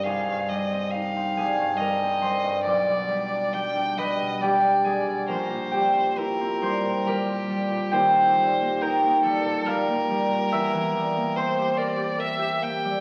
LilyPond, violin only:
\new Staff \with { instrumentName = "Violin" } { \time 3/4 \key c \minor \tempo 4 = 69 f''8 ees''8 f''4 ees''4 | d''4 g''8 ees''8 d''4 | c''4 bes'4 g'4 | \key ees \lydian c''4 bes'8 a'8 bes'4~ |
bes'4 c''8 d''8 e''8 g''8 | }